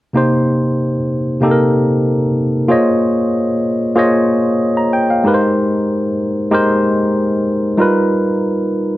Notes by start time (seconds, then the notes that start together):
0.13 C3 A#3 D#4 G4 C5
1.41 C3 A#3 D#4 G4 A4
1.51 A#4
2.68 A#3 F4 G#4 C5 C#5 D#5
3.95 A#3 F4 G#4 C5 C#5 D#5
4.77 A#5
4.93 G5
5.10 F5
5.24 G#3 D#4 G4 A#4
5.28 B4
5.34 C5
6.51 G#3 D#4 G4 A#4 C5
7.77 G3 D#4 F4 A#4
7.81 B4